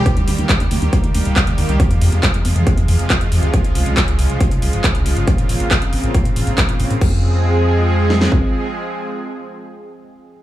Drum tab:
CC |----------------|----------------|----------------|----------------|
HH |xxoxxxoxxxoxxxox|xxoxxxoxxxoxxxox|xxoxxxoxxxoxxxox|xxoxxxoxxxoxxxox|
CP |----x-------x---|----x-------x---|----x-------x---|----x-------x---|
SD |----------------|----------------|----------------|----------------|
BD |o---o---o---o---|o---o---o---o---|o---o---o---o---|o---o---o---o---|

CC |x---------------|----------------|
HH |----------------|----------------|
CP |----------------|----------------|
SD |----------oo----|----------------|
BD |o-----------o---|----------------|